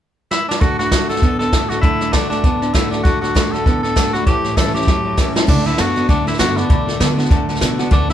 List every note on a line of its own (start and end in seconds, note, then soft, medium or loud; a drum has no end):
0.31 0.48 E4 medium
0.31 snare medium
0.49 0.62 D4 medium
0.49 snare medium
0.61 0.91 D3 medium
0.61 0.77 D3 medium
0.61 0.78 A3 medium
0.61 0.78 F#4 medium
0.61 0.72 D5 medium
0.61 0.72 F#5 medium
0.61 0.72 A5 loud
0.61 kick loud
0.78 0.91 D3 medium
0.78 0.91 A3 medium
0.78 1.07 F#4 loud
0.78 0.86 D5 medium
0.78 0.87 B5 medium
0.78 snare soft
0.92 1.09 D3 medium
0.92 1.08 D3 medium
0.92 1.09 A3 medium
0.92 1.08 A3 medium
0.92 1.10 D4 medium
0.92 1.08 F#4 medium
0.92 1.03 F#5 medium
0.92 1.03 A5 medium
0.92 kick medium
0.92 snare loud
0.92 hi-hat pedal medium
1.09 1.21 D3 medium
1.09 1.21 A3 medium
1.09 1.22 D4 soft
1.09 1.22 F#4 medium
1.09 1.38 A4 loud
1.09 1.17 D5 medium
1.09 1.17 F#5 medium
1.09 snare soft
1.16 snare soft
1.22 1.81 A2 medium
1.22 1.38 D3 medium
1.22 1.39 B3 loud
1.22 1.33 D5 loud
1.22 1.33 F#5 medium
1.22 1.33 A5 loud
1.22 kick loud
1.22 snare soft
1.39 1.51 D3 medium
1.39 1.52 B3 medium
1.39 1.71 A4 medium
1.39 1.48 D5 medium
1.39 1.48 F#5 medium
1.39 1.48 A5 medium
1.39 snare soft
1.52 1.70 D3 medium
1.52 1.69 D3 medium
1.52 1.70 A3 medium
1.52 1.69 A3 medium
1.52 1.70 D4 medium
1.52 1.69 F#4 loud
1.52 1.64 D5 medium
1.52 1.64 F#5 medium
1.52 1.64 A5 medium
1.52 kick medium
1.52 snare loud
1.52 hi-hat pedal medium
1.69 1.82 D3 medium
1.69 1.82 A3 medium
1.69 1.83 D4 medium
1.69 1.81 F#4 medium
1.69 1.82 F#4 medium
1.69 1.78 D5 medium
1.69 1.78 F#5 medium
1.69 1.79 A5 medium
1.69 snare soft
1.81 2.12 D3 medium
1.81 1.99 D3 medium
1.81 2.00 A3 medium
1.81 2.14 E4 loud
1.81 1.94 D5 medium
1.81 1.94 F#5 medium
1.81 1.94 A5 loud
1.81 kick loud
1.81 snare soft
2.00 2.12 D3 medium
2.00 2.13 A3 medium
2.00 2.08 D5 medium
2.00 2.08 F#5 medium
2.00 2.08 A5 medium
2.00 snare soft
2.13 2.43 D3 medium
2.13 2.30 D3 medium
2.13 2.30 A3 medium
2.13 2.43 A3 loud
2.13 2.30 D4 medium
2.13 2.43 D4 medium
2.13 2.44 F#4 medium
2.13 2.24 D5 medium
2.13 2.24 F#5 medium
2.13 2.25 A5 medium
2.13 kick medium
2.13 snare loud
2.13 hi-hat pedal medium
2.30 2.43 D3 medium
2.30 2.43 A3 medium
2.30 2.75 D4 medium
2.30 2.39 D5 medium
2.30 2.39 F#5 medium
2.30 2.39 A5 medium
2.30 snare soft
2.44 3.02 A2 medium
2.44 2.60 D3 medium
2.44 2.61 B3 medium
2.44 2.55 D5 loud
2.44 2.55 F#5 medium
2.44 2.55 A5 loud
2.44 kick loud
2.44 snare soft
2.62 2.73 D3 medium
2.62 2.73 B3 medium
2.62 2.69 D5 medium
2.62 2.70 F#5 medium
2.62 2.70 A5 medium
2.62 snare soft
2.74 2.91 D3 loud
2.74 2.91 D3 medium
2.74 2.92 A3 medium
2.74 2.91 A3 medium
2.74 2.92 D4 medium
2.74 2.90 E4 medium
2.74 2.91 F#4 medium
2.74 2.85 D5 medium
2.74 2.86 F#5 medium
2.74 2.86 A5 medium
2.74 kick medium
2.74 snare loud
2.74 hi-hat pedal medium
2.91 3.04 D3 medium
2.91 3.04 A3 medium
2.91 3.03 D4 medium
2.91 3.05 D4 soft
2.91 3.04 F#4 medium
2.91 3.00 D5 medium
2.91 3.00 F#5 medium
2.91 3.00 A5 medium
2.91 snare soft
3.03 3.33 D3 loud
3.03 3.21 D3 medium
3.03 3.22 A3 medium
3.03 3.21 F#4 medium
3.03 3.16 D5 medium
3.03 3.16 F#5 medium
3.03 3.16 A5 loud
3.03 kick loud
3.03 snare soft
3.21 3.34 D3 medium
3.21 3.35 A3 medium
3.21 3.53 F#4 medium
3.21 3.30 D5 medium
3.21 3.30 F#5 medium
3.21 3.31 A5 medium
3.21 snare soft
3.35 3.52 D3 medium
3.35 3.53 A3 medium
3.35 3.52 A3 medium
3.35 3.53 D4 medium
3.35 3.52 F#4 loud
3.35 3.46 D5 medium
3.35 3.46 F#5 medium
3.35 3.46 A5 medium
3.35 kick medium
3.35 snare loud
3.35 hi-hat pedal medium
3.52 3.65 D3 medium
3.52 3.65 A3 medium
3.52 3.66 D4 soft
3.52 3.65 F#4 medium
3.52 3.82 A4 medium
3.52 3.61 D5 medium
3.52 3.61 F#5 medium
3.52 3.61 A5 medium
3.52 snare soft
3.65 4.25 A2 medium
3.65 3.82 D3 medium
3.65 3.82 B3 medium
3.65 3.76 D5 loud
3.65 3.76 F#5 medium
3.65 3.77 A5 loud
3.65 kick loud
3.65 snare soft
3.83 3.95 D3 medium
3.83 3.95 B3 medium
3.83 4.12 A4 medium
3.83 3.91 D5 medium
3.83 3.91 F#5 medium
3.83 3.92 A5 medium
3.83 snare soft
3.96 4.13 D3 medium
3.96 4.12 D3 medium
3.96 4.14 A3 medium
3.96 4.13 A3 medium
3.96 4.14 D4 medium
3.96 4.13 F#4 loud
3.96 4.07 D5 medium
3.96 4.07 F#5 medium
3.96 4.07 A5 medium
3.96 kick medium
3.96 snare loud
3.96 hi-hat pedal medium
4.13 4.26 D3 medium
4.13 4.26 A3 medium
4.13 4.27 D4 medium
4.13 4.25 F#4 medium
4.13 4.26 F#4 medium
4.13 4.22 D5 medium
4.13 4.22 F#5 medium
4.13 4.22 B5 medium
4.13 snare soft
4.26 4.43 A2 medium
4.26 4.85 A2 loud
4.26 4.43 E3 medium
4.26 4.58 G4 medium
4.26 4.37 C#5 medium
4.26 4.37 E5 medium
4.26 4.38 A5 loud
4.26 kick loud
4.26 snare soft
4.44 4.56 A2 medium
4.44 4.56 E3 medium
4.44 4.52 C#5 medium
4.44 4.52 E5 medium
4.44 4.53 A5 medium
4.44 snare soft
4.56 4.73 A2 medium
4.56 4.74 E3 medium
4.56 4.73 E3 medium
4.56 4.75 G3 medium
4.56 4.75 C#4 medium
4.56 4.74 E4 medium
4.56 4.74 A4 medium
4.56 4.68 C#5 medium
4.56 4.68 E5 medium
4.56 kick medium
4.56 snare loud
4.56 hi-hat pedal medium
4.74 4.86 A2 medium
4.74 4.86 E3 medium
4.74 4.88 C#4 soft
4.74 4.87 E4 medium
4.74 5.32 G4 medium
4.74 4.82 C#5 medium
4.74 4.82 E5 medium
4.74 4.83 A5 medium
4.74 snare soft
4.81 snare soft
4.87 5.03 A2 medium
4.87 5.04 F#3 medium
4.87 4.98 C#5 medium
4.87 4.98 E5 medium
4.87 4.98 A5 loud
4.87 kick loud
4.87 snare medium
5.05 5.16 A2 medium
5.05 5.17 F#3 medium
5.05 5.13 C#5 medium
5.05 5.13 E5 medium
5.05 5.13 A5 medium
5.17 5.34 A2 medium
5.17 5.35 E3 medium
5.17 5.34 E3 medium
5.17 5.35 G3 medium
5.17 5.35 C#4 medium
5.17 5.34 E4 medium
5.17 5.29 C#5 medium
5.17 5.29 E5 medium
5.17 5.29 A5 medium
5.17 kick medium
5.17 snare medium
5.17 hi-hat pedal medium
5.35 5.47 A2 medium
5.35 5.47 E3 medium
5.35 5.49 C#4 soft
5.35 5.48 E4 medium
5.35 5.43 C#5 medium
5.35 5.43 E5 medium
5.35 5.44 A5 loud
5.35 snare medium
5.47 5.69 D2 loud
5.47 5.77 D3 loud
5.47 5.64 D3 medium
5.47 5.65 A3 medium
5.47 5.68 D4 medium
5.47 5.59 D5 loud
5.47 5.59 F#5 medium
5.47 5.59 A5 loud
5.47 kick loud
5.47 snare soft
5.47 crash loud
5.66 5.77 D3 medium
5.66 5.77 A3 medium
5.66 5.82 E4 medium
5.66 5.74 D5 medium
5.66 5.74 F#5 medium
5.66 5.74 A5 medium
5.66 snare soft
5.78 5.99 F#2 medium
5.78 5.96 D3 medium
5.78 5.95 D3 medium
5.78 5.96 A3 medium
5.78 5.95 B3 medium
5.78 5.96 D4 medium
5.78 5.95 F#4 medium
5.78 6.09 F#4 loud
5.78 5.90 D5 medium
5.78 5.90 A5 medium
5.78 snare loud
5.78 hi-hat pedal medium
5.96 6.08 D3 medium
5.96 6.08 B3 medium
5.96 6.09 D4 soft
5.96 6.08 F#4 medium
5.96 6.04 D5 medium
5.96 6.04 F#5 medium
5.96 6.04 A5 medium
5.96 snare soft
6.09 6.29 D2 medium
6.09 6.67 A2 medium
6.09 6.25 D3 medium
6.09 6.25 A3 medium
6.09 6.26 D4 medium
6.09 6.20 D5 loud
6.09 6.20 F#5 medium
6.09 6.20 A5 loud
6.09 kick loud
6.09 snare soft
6.27 6.38 D3 medium
6.27 6.38 A3 medium
6.27 6.39 E4 medium
6.27 6.34 D5 medium
6.27 6.35 F#5 medium
6.27 6.35 A5 medium
6.27 snare soft
6.33 snare soft
6.38 6.59 G2 loud
6.38 6.56 D3 medium
6.38 6.55 D3 medium
6.38 6.56 A3 medium
6.38 6.56 B3 medium
6.38 6.57 D4 medium
6.38 6.58 F#4 loud
6.38 6.55 F#4 medium
6.38 6.50 F#5 medium
6.38 6.51 A5 medium
6.38 snare loud
6.38 hi-hat pedal medium
6.57 6.68 D3 medium
6.57 6.69 B3 medium
6.57 7.18 D4 medium
6.57 6.70 D4 soft
6.57 6.69 F#4 medium
6.57 6.65 D5 medium
6.57 6.65 F#5 medium
6.57 6.65 B5 medium
6.57 snare soft
6.69 6.90 B2 loud
6.69 6.86 D3 medium
6.69 6.99 D3 medium
6.69 6.86 A3 medium
6.69 6.80 D5 medium
6.69 6.81 F#5 medium
6.69 6.81 B5 loud
6.69 kick loud
6.69 snare soft
6.87 6.98 D3 medium
6.87 6.99 A3 medium
6.87 6.95 D5 medium
6.87 6.95 F#5 medium
6.87 6.96 A5 medium
6.87 snare soft
7.00 7.16 D3 medium
7.00 7.20 D3 medium
7.00 7.18 D3 medium
7.00 7.18 A3 medium
7.00 7.16 B3 loud
7.00 7.18 D4 medium
7.00 7.17 F#4 medium
7.00 7.11 D5 medium
7.00 7.11 F#5 medium
7.00 7.12 A5 medium
7.00 snare loud
7.00 hi-hat pedal medium
7.18 7.29 D3 medium
7.18 7.30 B3 medium
7.18 7.31 D4 soft
7.18 7.30 F#4 medium
7.18 7.26 D5 medium
7.18 7.26 F#5 medium
7.18 7.26 A5 medium
7.18 snare soft
7.25 snare soft
7.30 7.89 A2 medium
7.30 7.51 D3 medium
7.30 7.47 D3 medium
7.30 7.47 A3 loud
7.30 7.41 D5 loud
7.30 7.41 F#5 loud
7.30 7.42 A5 loud
7.30 kick loud
7.30 snare soft
7.48 7.60 D3 medium
7.48 7.60 A3 medium
7.48 7.56 D5 medium
7.48 7.56 F#5 medium
7.48 7.56 A5 loud
7.48 snare soft
7.55 snare soft
7.60 7.81 B2 loud
7.60 7.78 D3 medium
7.60 7.77 D3 medium
7.60 7.79 A3 medium
7.60 7.78 B3 medium
7.60 7.79 D4 medium
7.60 7.78 F#4 medium
7.60 7.72 D5 medium
7.60 7.72 F#5 medium
7.60 7.72 A5 loud
7.60 snare loud
7.60 hi-hat pedal medium
7.78 7.90 D3 medium
7.78 7.91 B3 medium
7.78 7.92 D4 medium
7.78 7.91 F#4 medium
7.78 7.86 D5 medium
7.78 7.86 F#5 medium
7.78 7.87 A5 loud
7.78 snare soft
7.91 8.12 D2 loud
7.91 8.13 D3 loud
7.91 8.07 D3 medium
7.91 8.08 A3 medium
7.91 8.09 D4 loud
7.91 8.02 D5 medium
7.91 8.02 F#5 loud
7.91 8.03 A5 loud
7.91 kick loud
7.91 snare soft
8.09 8.13 D3 medium
8.09 8.13 A3 medium
8.09 8.13 D5 medium
8.09 8.13 F#5 medium
8.09 snare soft